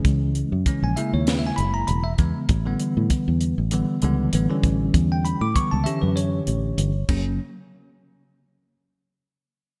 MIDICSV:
0, 0, Header, 1, 4, 480
1, 0, Start_track
1, 0, Tempo, 612245
1, 37, Time_signature, 4, 2, 24, 8
1, 7683, End_track
2, 0, Start_track
2, 0, Title_t, "Tine electric piano"
2, 0, Program_c, 0, 4
2, 0, Note_on_c, 0, 49, 87
2, 0, Note_on_c, 0, 52, 79
2, 0, Note_on_c, 0, 56, 78
2, 0, Note_on_c, 0, 61, 91
2, 398, Note_off_c, 0, 49, 0
2, 400, Note_off_c, 0, 56, 0
2, 401, Note_off_c, 0, 52, 0
2, 404, Note_off_c, 0, 61, 0
2, 517, Note_on_c, 0, 49, 79
2, 520, Note_on_c, 0, 52, 72
2, 527, Note_on_c, 0, 56, 67
2, 531, Note_on_c, 0, 61, 84
2, 656, Note_on_c, 0, 80, 85
2, 723, Note_off_c, 0, 49, 0
2, 725, Note_off_c, 0, 52, 0
2, 729, Note_off_c, 0, 56, 0
2, 730, Note_off_c, 0, 61, 0
2, 756, Note_on_c, 0, 76, 85
2, 760, Note_off_c, 0, 80, 0
2, 761, Note_on_c, 0, 49, 77
2, 762, Note_on_c, 0, 64, 69
2, 767, Note_on_c, 0, 56, 73
2, 772, Note_on_c, 0, 58, 80
2, 880, Note_off_c, 0, 76, 0
2, 892, Note_on_c, 0, 73, 80
2, 998, Note_off_c, 0, 73, 0
2, 1003, Note_on_c, 0, 71, 72
2, 1078, Note_off_c, 0, 71, 0
2, 1087, Note_on_c, 0, 76, 80
2, 1149, Note_on_c, 0, 80, 84
2, 1160, Note_off_c, 0, 76, 0
2, 1225, Note_on_c, 0, 83, 115
2, 1231, Note_off_c, 0, 80, 0
2, 1354, Note_off_c, 0, 83, 0
2, 1362, Note_on_c, 0, 82, 94
2, 1468, Note_on_c, 0, 83, 96
2, 1473, Note_off_c, 0, 82, 0
2, 1581, Note_off_c, 0, 49, 0
2, 1582, Note_off_c, 0, 64, 0
2, 1584, Note_off_c, 0, 56, 0
2, 1587, Note_off_c, 0, 58, 0
2, 1596, Note_off_c, 0, 83, 0
2, 1596, Note_on_c, 0, 76, 94
2, 1666, Note_off_c, 0, 76, 0
2, 1707, Note_on_c, 0, 49, 70
2, 1712, Note_on_c, 0, 52, 67
2, 1719, Note_on_c, 0, 56, 66
2, 1724, Note_on_c, 0, 59, 75
2, 1953, Note_off_c, 0, 49, 0
2, 1955, Note_off_c, 0, 52, 0
2, 1959, Note_off_c, 0, 56, 0
2, 1961, Note_off_c, 0, 59, 0
2, 2082, Note_on_c, 0, 50, 86
2, 2087, Note_on_c, 0, 52, 85
2, 2089, Note_on_c, 0, 55, 82
2, 2091, Note_on_c, 0, 59, 104
2, 2797, Note_off_c, 0, 50, 0
2, 2800, Note_off_c, 0, 52, 0
2, 2801, Note_off_c, 0, 55, 0
2, 2802, Note_off_c, 0, 59, 0
2, 2914, Note_on_c, 0, 50, 84
2, 2919, Note_on_c, 0, 52, 81
2, 2925, Note_on_c, 0, 55, 83
2, 2929, Note_on_c, 0, 59, 101
2, 3122, Note_off_c, 0, 50, 0
2, 3125, Note_off_c, 0, 52, 0
2, 3128, Note_off_c, 0, 55, 0
2, 3130, Note_off_c, 0, 59, 0
2, 3155, Note_on_c, 0, 50, 93
2, 3163, Note_on_c, 0, 52, 86
2, 3167, Note_on_c, 0, 55, 88
2, 3170, Note_on_c, 0, 59, 107
2, 3363, Note_off_c, 0, 50, 0
2, 3367, Note_off_c, 0, 52, 0
2, 3369, Note_off_c, 0, 55, 0
2, 3371, Note_off_c, 0, 59, 0
2, 3398, Note_on_c, 0, 50, 78
2, 3401, Note_on_c, 0, 52, 74
2, 3409, Note_on_c, 0, 55, 72
2, 3409, Note_on_c, 0, 59, 90
2, 3506, Note_off_c, 0, 50, 0
2, 3508, Note_off_c, 0, 52, 0
2, 3511, Note_off_c, 0, 55, 0
2, 3512, Note_off_c, 0, 59, 0
2, 3522, Note_on_c, 0, 50, 89
2, 3527, Note_on_c, 0, 52, 85
2, 3532, Note_on_c, 0, 55, 89
2, 3533, Note_on_c, 0, 61, 98
2, 4013, Note_on_c, 0, 79, 90
2, 4113, Note_on_c, 0, 83, 89
2, 4119, Note_off_c, 0, 79, 0
2, 4238, Note_off_c, 0, 50, 0
2, 4239, Note_off_c, 0, 83, 0
2, 4240, Note_off_c, 0, 52, 0
2, 4243, Note_off_c, 0, 55, 0
2, 4243, Note_off_c, 0, 61, 0
2, 4245, Note_on_c, 0, 86, 101
2, 4346, Note_on_c, 0, 50, 80
2, 4355, Note_off_c, 0, 86, 0
2, 4355, Note_on_c, 0, 52, 73
2, 4357, Note_on_c, 0, 55, 77
2, 4357, Note_on_c, 0, 85, 93
2, 4361, Note_on_c, 0, 59, 84
2, 4480, Note_on_c, 0, 81, 87
2, 4481, Note_off_c, 0, 85, 0
2, 4558, Note_off_c, 0, 50, 0
2, 4563, Note_off_c, 0, 52, 0
2, 4564, Note_off_c, 0, 55, 0
2, 4566, Note_off_c, 0, 59, 0
2, 4577, Note_on_c, 0, 76, 95
2, 4586, Note_on_c, 0, 50, 78
2, 4590, Note_on_c, 0, 52, 73
2, 4592, Note_off_c, 0, 81, 0
2, 4595, Note_on_c, 0, 67, 75
2, 4596, Note_on_c, 0, 61, 87
2, 4711, Note_off_c, 0, 76, 0
2, 4717, Note_on_c, 0, 71, 76
2, 4828, Note_on_c, 0, 73, 86
2, 4831, Note_off_c, 0, 71, 0
2, 5414, Note_off_c, 0, 50, 0
2, 5415, Note_off_c, 0, 52, 0
2, 5418, Note_off_c, 0, 67, 0
2, 5419, Note_off_c, 0, 61, 0
2, 5560, Note_on_c, 0, 54, 73
2, 5561, Note_on_c, 0, 58, 72
2, 5562, Note_on_c, 0, 49, 83
2, 5563, Note_on_c, 0, 61, 90
2, 5648, Note_off_c, 0, 73, 0
2, 5782, Note_off_c, 0, 54, 0
2, 5783, Note_off_c, 0, 58, 0
2, 5784, Note_off_c, 0, 49, 0
2, 5784, Note_off_c, 0, 61, 0
2, 7683, End_track
3, 0, Start_track
3, 0, Title_t, "Fingered electric bass"
3, 0, Program_c, 1, 33
3, 37, Note_on_c, 1, 37, 90
3, 336, Note_off_c, 1, 37, 0
3, 409, Note_on_c, 1, 42, 81
3, 499, Note_off_c, 1, 42, 0
3, 647, Note_on_c, 1, 34, 78
3, 738, Note_off_c, 1, 34, 0
3, 889, Note_on_c, 1, 39, 82
3, 1174, Note_off_c, 1, 39, 0
3, 1240, Note_on_c, 1, 30, 87
3, 1434, Note_off_c, 1, 30, 0
3, 1478, Note_on_c, 1, 28, 102
3, 1673, Note_off_c, 1, 28, 0
3, 1714, Note_on_c, 1, 40, 87
3, 1819, Note_off_c, 1, 40, 0
3, 1953, Note_on_c, 1, 33, 104
3, 2150, Note_off_c, 1, 33, 0
3, 2327, Note_on_c, 1, 45, 90
3, 2419, Note_off_c, 1, 45, 0
3, 2569, Note_on_c, 1, 40, 89
3, 2763, Note_off_c, 1, 40, 0
3, 2806, Note_on_c, 1, 33, 83
3, 3001, Note_off_c, 1, 33, 0
3, 3159, Note_on_c, 1, 37, 91
3, 3354, Note_off_c, 1, 37, 0
3, 3396, Note_on_c, 1, 33, 98
3, 3500, Note_off_c, 1, 33, 0
3, 3632, Note_on_c, 1, 33, 96
3, 3830, Note_off_c, 1, 33, 0
3, 3872, Note_on_c, 1, 40, 97
3, 4173, Note_off_c, 1, 40, 0
3, 4242, Note_on_c, 1, 45, 86
3, 4335, Note_off_c, 1, 45, 0
3, 4489, Note_on_c, 1, 37, 82
3, 4579, Note_off_c, 1, 37, 0
3, 4725, Note_on_c, 1, 42, 80
3, 5013, Note_off_c, 1, 42, 0
3, 5078, Note_on_c, 1, 33, 95
3, 5273, Note_off_c, 1, 33, 0
3, 5312, Note_on_c, 1, 31, 102
3, 5510, Note_off_c, 1, 31, 0
3, 5558, Note_on_c, 1, 30, 101
3, 5781, Note_off_c, 1, 30, 0
3, 7683, End_track
4, 0, Start_track
4, 0, Title_t, "Drums"
4, 37, Note_on_c, 9, 42, 76
4, 38, Note_on_c, 9, 36, 104
4, 116, Note_off_c, 9, 36, 0
4, 116, Note_off_c, 9, 42, 0
4, 275, Note_on_c, 9, 42, 54
4, 353, Note_off_c, 9, 42, 0
4, 517, Note_on_c, 9, 42, 76
4, 518, Note_on_c, 9, 36, 75
4, 596, Note_off_c, 9, 36, 0
4, 596, Note_off_c, 9, 42, 0
4, 760, Note_on_c, 9, 42, 62
4, 838, Note_off_c, 9, 42, 0
4, 995, Note_on_c, 9, 42, 77
4, 1002, Note_on_c, 9, 38, 105
4, 1074, Note_off_c, 9, 42, 0
4, 1081, Note_off_c, 9, 38, 0
4, 1237, Note_on_c, 9, 42, 58
4, 1315, Note_off_c, 9, 42, 0
4, 1472, Note_on_c, 9, 42, 82
4, 1550, Note_off_c, 9, 42, 0
4, 1711, Note_on_c, 9, 42, 59
4, 1715, Note_on_c, 9, 36, 85
4, 1790, Note_off_c, 9, 42, 0
4, 1793, Note_off_c, 9, 36, 0
4, 1950, Note_on_c, 9, 42, 80
4, 1954, Note_on_c, 9, 36, 101
4, 2029, Note_off_c, 9, 42, 0
4, 2032, Note_off_c, 9, 36, 0
4, 2192, Note_on_c, 9, 42, 60
4, 2270, Note_off_c, 9, 42, 0
4, 2430, Note_on_c, 9, 42, 87
4, 2433, Note_on_c, 9, 36, 77
4, 2508, Note_off_c, 9, 42, 0
4, 2512, Note_off_c, 9, 36, 0
4, 2670, Note_on_c, 9, 42, 67
4, 2749, Note_off_c, 9, 42, 0
4, 2909, Note_on_c, 9, 42, 82
4, 2988, Note_off_c, 9, 42, 0
4, 3150, Note_on_c, 9, 42, 62
4, 3228, Note_off_c, 9, 42, 0
4, 3393, Note_on_c, 9, 42, 93
4, 3472, Note_off_c, 9, 42, 0
4, 3634, Note_on_c, 9, 36, 83
4, 3634, Note_on_c, 9, 42, 62
4, 3712, Note_off_c, 9, 36, 0
4, 3712, Note_off_c, 9, 42, 0
4, 3874, Note_on_c, 9, 36, 103
4, 3874, Note_on_c, 9, 42, 78
4, 3953, Note_off_c, 9, 36, 0
4, 3953, Note_off_c, 9, 42, 0
4, 4119, Note_on_c, 9, 42, 54
4, 4197, Note_off_c, 9, 42, 0
4, 4356, Note_on_c, 9, 36, 75
4, 4356, Note_on_c, 9, 42, 84
4, 4434, Note_off_c, 9, 36, 0
4, 4435, Note_off_c, 9, 42, 0
4, 4596, Note_on_c, 9, 42, 63
4, 4674, Note_off_c, 9, 42, 0
4, 4836, Note_on_c, 9, 42, 74
4, 4914, Note_off_c, 9, 42, 0
4, 5073, Note_on_c, 9, 42, 59
4, 5151, Note_off_c, 9, 42, 0
4, 5317, Note_on_c, 9, 42, 82
4, 5395, Note_off_c, 9, 42, 0
4, 5555, Note_on_c, 9, 49, 86
4, 5557, Note_on_c, 9, 36, 104
4, 5634, Note_off_c, 9, 49, 0
4, 5636, Note_off_c, 9, 36, 0
4, 7683, End_track
0, 0, End_of_file